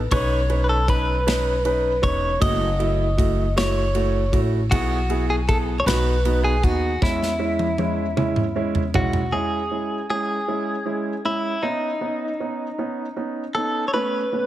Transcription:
0.11 B1 C#4 D#4 B4 C#5, kick, ride
0.50 C#4 D#4 B4, ride
0.64 B4
0.69 A4
0.88 C#4 D#4 B4, kick, ride
1.27 C#4 D#4 B4, snare, ride
1.65 C#4 D#4 B4, ride
2.02 E1 C#4 D#4 B4 C#5, kick, ride
2.40 F#1 A3 E4 F#4 D#5, kick, ride
2.79 A3 E4 F#4, ride
3.17 A3 E4 F#4, kick, ride
3.56 A3 E4 F#4 C#5, snare, ride
3.95 A3 E4 F#4, ride
4.32 A1 A3 E4 F#4, kick, ride
4.71 B1 B3 E4 F#4 G#4, kick, ride
5.09 B3 E4 G#4, ride
5.30 G#4
5.48 B3 E4 G#4 A4, kick, ride
5.80 C#5
5.86 B1 B3 D#4 F#4 B4, snare, ride
6.25 B3 D#4 F#4, ride
6.44 G#4
6.63 D#2 B3 D#4 F#4, kick, ride
7.01 E2 G#3 C#4 E4, kick, snare
7.23 snare
7.39 G#3 C#4 E4
7.59 high tom
7.78 G#3 C#4 E4, high tom
8.17 G#3 C#4 E4, mid tom
8.36 mid tom
8.56 G#3 C#4 E4
8.75 floor tom
8.94 B1 G#3 C#4 E4 F#4, floor tom
9.13 floor tom
9.32 G#3 C#4 E4 G#4
9.71 G#3 C#4 E4
10.10 G#3 C#4 E4 G#4
10.48 G#3 C#4 E4
10.85 G#3 C#4 E4
11.25 G#3 C#4 E4
11.62 B3 C#4 D#4
12.01 B3 C#4 D#4
12.40 B3 C#4 D#4
12.78 B3 C#4 D#4
13.16 B3 C#4 D#4
13.55 B3 C#4 D#4 A4
13.88 C#5
13.93 A3 B3 C#4 B4
14.32 A3 B3 C#4

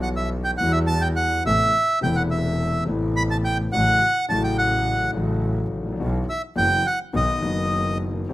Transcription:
Already playing: B1 B2 E3 G3 B3 F#4
0.02 F#5
0.16 E5
0.44 G5
0.58 E2 E3 G3 B3 F#5
0.63 F#4
0.72 E5
0.87 A5
1.01 G5
1.16 F#5
1.45 A1 A2 C3 A3 B3 E4 E5
2.01 E1 E2 C3 A3 B3 E4 G5
2.16 F#5
2.31 E5
2.85 A1 A2 C3 A3 B3
2.89 E4
3.16 B5
3.31 A5
3.45 G5
3.72 A1 A2 C#3 F#3 A3 F#4 F#5
4.29 A1 A2 C#3 F#3 A3 F#4 A5
4.44 G5
4.58 F#5
5.13 A1 A2 C#3 F#3 A3 F#4
5.71 A1
5.78 G#1
5.85 A1
5.92 A#1
5.99 B1 B2 E3 F#3 B3 F#4
6.30 E5
6.55 F#1 F#2 E3 F#3 B3 F#4 G5
6.87 F#5
7.13 B1 B2 D#3 F#3 B3 F#4 D#5
7.40 F#1 F#2 D#3 F#3 B3
7.45 F#4
8.29 C2 C3 E3 G3 C4 G4

